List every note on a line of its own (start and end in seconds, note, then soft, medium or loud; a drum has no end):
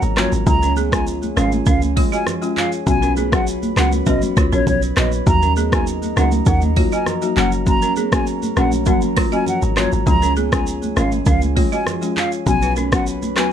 0.00 0.27 G#1 medium
0.00 0.43 F#4 medium
0.00 0.43 A#4 medium
0.00 5.23 C#5 medium
0.00 0.44 A#5 medium
0.00 shaker medium
0.16 0.39 F#3 medium
0.16 0.40 A#3 medium
0.16 0.40 C#4 medium
0.16 0.28 F4 medium
0.16 0.40 F#4 medium
0.16 0.27 C#5 medium
0.16 0.31 C#5 medium
0.16 cross-stick loud
0.16 clap loud
0.16 low conga medium
0.32 0.44 G#1 medium
0.32 shaker soft
0.46 1.33 C#2 loud
0.46 0.69 F3 medium
0.46 0.69 G#3 medium
0.46 0.69 C#4 medium
0.46 2.84 F4 medium
0.46 0.70 F4 loud
0.46 2.84 G#4 medium
0.46 2.84 G#5 medium
0.46 0.73 A#5 loud
0.46 kick loud
0.46 low conga medium
0.46 shaker medium
0.62 0.72 C#4 medium
0.62 0.72 A#4 medium
0.62 shaker medium
0.77 0.88 B3 medium
0.77 0.87 G#4 medium
0.77 high conga medium
0.77 shaker medium
0.92 1.33 F3 medium
0.92 1.33 G#3 medium
0.92 1.33 C#4 medium
0.92 1.33 F4 medium
0.92 1.05 G#5 medium
0.92 kick loud
0.92 cross-stick loud
0.92 shaker medium
1.07 shaker medium
1.23 high conga medium
1.23 shaker medium
1.37 1.62 G#1 medium
1.37 1.64 F3 medium
1.37 1.64 G#3 medium
1.37 1.64 C#4 medium
1.37 1.47 C#4 medium
1.37 1.65 F4 medium
1.37 1.47 A#4 medium
1.37 1.51 F5 medium
1.37 cross-stick loud
1.37 shaker medium
1.52 high conga medium
1.52 shaker medium
1.66 2.04 C#2 loud
1.66 1.77 C#4 medium
1.66 1.77 A#4 medium
1.66 1.81 F5 medium
1.66 kick loud
1.66 low conga medium
1.66 shaker medium
1.82 high conga medium
1.82 shaker medium
1.96 2.19 F3 medium
1.96 2.19 G#3 medium
1.96 2.20 C#4 medium
1.96 2.20 F4 medium
1.96 2.07 F4 medium
1.96 2.07 C#5 medium
1.96 kick loud
1.96 open hi-hat medium
1.96 high conga medium
2.12 2.22 F#4 medium
2.12 2.22 D#5 medium
2.12 2.25 G#5 medium
2.12 shaker soft
2.27 cross-stick loud
2.27 low conga medium
2.27 shaker medium
2.42 2.64 F3 medium
2.42 2.64 G#3 medium
2.42 2.64 C#4 medium
2.42 2.65 F4 medium
2.42 shaker medium
2.57 2.67 F4 medium
2.57 2.67 C#5 medium
2.57 2.71 F5 medium
2.57 clap loud
2.57 low conga medium
2.72 shaker soft
2.86 3.73 B1 loud
2.86 3.09 F#3 medium
2.86 3.09 B3 medium
2.86 3.10 C#4 medium
2.86 5.24 F#4 medium
2.86 3.10 F#4 loud
2.86 5.24 B4 medium
2.86 3.13 G#5 loud
2.86 5.24 B5 medium
2.86 kick loud
2.86 low conga medium
2.86 shaker medium
3.02 3.12 C#4 medium
3.02 3.12 A#4 medium
3.02 shaker medium
3.17 3.28 B3 medium
3.17 3.27 G#4 medium
3.17 high conga medium
3.17 shaker medium
3.32 3.73 F#3 medium
3.32 3.73 B3 medium
3.32 3.73 C#4 medium
3.32 3.73 F#4 medium
3.32 3.45 F#5 medium
3.32 kick loud
3.32 cross-stick loud
3.32 shaker medium
3.47 shaker medium
3.63 high conga medium
3.63 shaker medium
3.76 4.02 C#2 medium
3.76 4.04 F#3 medium
3.76 4.04 B3 medium
3.76 4.04 C#4 medium
3.76 3.88 C#4 medium
3.76 4.05 F#4 medium
3.76 3.87 A#4 medium
3.76 3.91 F#5 medium
3.76 cross-stick loud
3.76 clap loud
3.76 shaker medium
3.92 high conga medium
3.92 shaker medium
4.06 4.20 B1 loud
4.06 4.48 F#3 medium
4.06 4.48 B3 medium
4.06 4.49 C#4 medium
4.06 4.49 F#4 loud
4.06 4.17 F#4 medium
4.06 4.17 B4 medium
4.06 4.21 D#5 medium
4.06 kick loud
4.06 low conga medium
4.06 shaker medium
4.22 high conga medium
4.22 shaker medium
4.37 4.50 C#2 medium
4.37 4.48 F4 medium
4.37 4.47 C#5 medium
4.37 kick loud
4.37 cross-stick medium
4.37 high conga medium
4.37 shaker medium
4.52 4.64 A#1 medium
4.52 4.74 F#3 medium
4.52 4.75 B3 medium
4.52 4.75 C#4 medium
4.52 4.62 C#4 medium
4.52 4.75 F#4 medium
4.52 4.62 A#4 medium
4.52 4.65 C#5 medium
4.52 shaker soft
4.67 4.92 B1 loud
4.67 4.81 C#5 medium
4.67 kick loud
4.67 low conga medium
4.67 shaker medium
4.82 shaker medium
4.96 5.22 A#1 loud
4.96 5.19 F#3 medium
4.96 5.19 B3 medium
4.96 5.20 C#4 medium
4.96 5.08 D#4 medium
4.96 5.20 F#4 medium
4.96 5.07 B4 medium
4.96 5.11 D#5 medium
4.96 cross-stick loud
4.96 clap medium
4.96 low conga medium
4.96 shaker medium
5.12 shaker soft
5.26 6.13 D#2 loud
5.26 5.49 F#3 medium
5.26 5.49 A#3 medium
5.26 5.50 D#4 medium
5.26 10.03 F#4 medium
5.26 5.50 F#4 loud
5.26 10.03 A#4 medium
5.26 7.35 D#5 medium
5.26 10.03 A#5 medium
5.26 5.53 A#5 loud
5.26 kick loud
5.26 low conga medium
5.26 shaker medium
5.42 5.52 C#4 medium
5.42 5.52 A#4 medium
5.42 shaker medium
5.56 5.68 B3 medium
5.56 5.67 G#4 medium
5.56 high conga medium
5.56 shaker medium
5.72 6.13 F#3 medium
5.72 6.13 A#3 medium
5.72 6.13 D#4 medium
5.72 6.13 F#4 medium
5.72 5.85 G#5 medium
5.72 kick loud
5.72 cross-stick loud
5.72 shaker medium
5.87 shaker medium
6.03 high conga medium
6.03 shaker medium
6.16 6.42 C#2 loud
6.16 6.44 F#3 medium
6.16 6.44 A#3 medium
6.16 6.28 C#4 medium
6.16 6.44 D#4 medium
6.16 6.44 F#4 medium
6.16 6.27 A#4 medium
6.16 6.31 F#5 medium
6.16 cross-stick loud
6.16 shaker medium
6.32 high conga medium
6.32 shaker medium
6.46 6.84 D#2 loud
6.46 6.58 D#4 medium
6.46 6.57 A#4 medium
6.46 6.61 F#5 medium
6.46 kick loud
6.46 low conga medium
6.46 shaker medium
6.61 high conga medium
6.61 shaker medium
6.76 6.99 F#3 medium
6.76 6.99 A#3 medium
6.76 7.00 D#4 medium
6.76 6.87 F4 medium
6.76 7.00 F#4 medium
6.76 6.87 C#5 loud
6.76 kick loud
6.76 open hi-hat medium
6.76 high conga medium
6.92 7.02 F#4 medium
6.92 7.02 D#5 medium
6.92 7.06 G#5 medium
6.92 shaker soft
7.06 cross-stick loud
7.06 low conga medium
7.06 shaker medium
7.22 7.35 F#3 medium
7.22 7.36 A#3 medium
7.22 7.45 D#4 medium
7.22 7.36 F#4 medium
7.22 shaker medium
7.36 7.87 F#1 loud
7.36 7.64 F#3 loud
7.36 7.64 A#3 medium
7.36 7.64 C#4 medium
7.36 7.65 F#4 loud
7.36 7.47 F#4 medium
7.36 7.47 C#5 medium
7.36 13.53 C#5 medium
7.36 7.51 F#5 medium
7.36 clap loud
7.36 low conga medium
7.52 shaker medium
7.66 7.89 F#3 medium
7.66 7.89 A#3 medium
7.66 7.89 C#4 medium
7.66 7.90 F#4 loud
7.66 7.93 A#5 loud
7.66 kick loud
7.66 low conga medium
7.66 shaker medium
7.82 7.92 C#4 medium
7.82 7.92 A#4 medium
7.82 shaker medium
7.96 8.07 B3 medium
7.96 8.07 G#4 medium
7.96 high conga medium
7.96 shaker medium
8.12 8.53 F#3 medium
8.12 8.53 A#3 medium
8.12 8.53 C#4 medium
8.12 8.53 F#4 medium
8.12 8.25 G#5 medium
8.12 kick loud
8.12 cross-stick loud
8.12 shaker medium
8.27 shaker medium
8.42 high conga medium
8.42 shaker medium
8.56 8.88 A#1 medium
8.56 8.84 F#3 medium
8.56 8.84 A#3 medium
8.56 8.84 C#4 medium
8.56 8.67 C#4 medium
8.56 8.84 F#4 medium
8.56 8.67 A#4 medium
8.56 8.71 F#5 medium
8.56 cross-stick loud
8.56 shaker medium
8.72 high conga medium
8.72 shaker medium
8.86 9.24 F#1 loud
8.86 9.28 F#3 loud
8.86 9.29 A#3 medium
8.86 9.29 C#4 medium
8.86 8.97 C#4 medium
8.86 9.29 F#4 loud
8.86 8.97 A#4 medium
8.86 9.01 F#5 medium
8.86 kick loud
8.86 low conga medium
8.86 shaker medium
9.02 high conga medium
9.02 shaker medium
9.17 9.27 F4 medium
9.17 9.27 C#5 loud
9.17 kick loud
9.17 cross-stick loud
9.17 open hi-hat medium
9.17 high conga medium
9.32 9.54 F#3 medium
9.32 9.54 A#3 medium
9.32 9.55 C#4 medium
9.32 9.55 F#4 medium
9.32 9.42 F#4 medium
9.32 9.42 D#5 medium
9.32 9.46 G#5 medium
9.32 shaker soft
9.46 9.61 F#5 medium
9.46 low conga medium
9.46 shaker medium
9.62 9.87 G#1 medium
9.62 shaker medium
9.76 9.99 F#3 medium
9.76 9.99 A#3 medium
9.76 10.00 C#4 medium
9.76 9.87 F4 medium
9.76 10.00 F#4 medium
9.76 9.87 C#5 medium
9.76 9.91 C#5 medium
9.76 cross-stick loud
9.76 clap loud
9.76 low conga medium
9.92 10.04 G#1 medium
9.92 shaker soft
10.06 10.93 C#2 loud
10.06 10.29 F3 medium
10.06 10.29 G#3 medium
10.06 10.29 C#4 medium
10.06 12.44 F4 medium
10.06 10.30 F4 loud
10.06 12.44 G#4 medium
10.06 12.44 G#5 medium
10.06 10.33 A#5 loud
10.06 kick loud
10.06 low conga medium
10.06 shaker medium
10.22 10.32 C#4 medium
10.22 10.32 A#4 medium
10.22 shaker medium
10.36 10.47 B3 medium
10.36 10.47 G#4 medium
10.36 high conga medium
10.36 shaker medium
10.52 10.93 F3 medium
10.52 10.93 G#3 medium
10.52 10.93 C#4 medium
10.52 10.93 F4 medium
10.52 10.65 G#5 medium
10.52 kick loud
10.52 cross-stick loud
10.52 shaker medium
10.67 shaker medium
10.82 high conga medium
10.82 shaker medium
10.96 11.22 G#1 medium
10.96 11.24 F3 medium
10.96 11.24 G#3 medium
10.96 11.24 C#4 medium
10.96 11.08 C#4 medium
10.96 11.24 F4 medium
10.96 11.07 A#4 medium
10.96 11.11 F5 medium
10.96 cross-stick loud
10.96 shaker medium
11.12 high conga medium
11.12 shaker medium
11.26 11.64 C#2 loud
11.26 11.37 C#4 medium
11.26 11.37 A#4 medium
11.26 11.41 F5 medium
11.26 kick loud
11.26 low conga medium
11.26 shaker medium
11.42 high conga medium
11.42 shaker medium
11.56 11.79 F3 medium
11.56 11.79 G#3 medium
11.56 11.79 C#4 medium
11.56 11.79 F4 medium
11.56 11.67 F4 medium
11.56 11.67 C#5 loud
11.56 kick medium
11.56 open hi-hat medium
11.56 high conga medium
11.72 11.82 F#4 medium
11.72 11.82 D#5 medium
11.72 11.85 G#5 medium
11.72 shaker soft
11.86 cross-stick loud
11.86 low conga medium
11.86 shaker medium
12.01 12.24 F3 medium
12.01 12.24 G#3 medium
12.01 12.24 C#4 medium
12.01 12.24 F4 medium
12.01 shaker medium
12.17 12.27 F4 medium
12.17 12.27 C#5 medium
12.17 12.31 F5 medium
12.17 clap medium
12.17 low conga medium
12.32 shaker soft
12.46 13.38 B1 loud
12.46 12.69 F#3 medium
12.46 12.69 B3 medium
12.46 12.69 C#4 medium
12.46 13.53 F#4 medium
12.46 12.70 F#4 loud
12.46 13.53 B4 medium
12.46 12.73 G#5 loud
12.46 13.53 B5 medium
12.46 kick loud
12.46 low conga medium
12.46 shaker medium
12.62 12.72 D#4 medium
12.62 12.72 B4 medium
12.62 shaker medium
12.76 12.87 C#4 medium
12.76 12.87 A#4 medium
12.76 high conga medium
12.76 shaker medium
12.92 13.33 F#3 medium
12.92 13.33 B3 medium
12.92 13.33 C#4 medium
12.92 13.33 F#4 medium
12.92 13.05 F#5 medium
12.92 kick loud
12.92 cross-stick loud
12.92 shaker medium
13.07 shaker medium
13.22 high conga medium
13.22 shaker medium
13.36 13.53 C#2 loud
13.36 13.53 F#3 medium
13.36 13.53 B3 medium
13.36 13.53 C#4 medium
13.36 13.48 D#4 medium
13.36 13.53 F#4 medium
13.36 13.47 B4 medium
13.36 13.51 G#5 medium
13.36 cross-stick loud
13.36 clap loud
13.36 shaker medium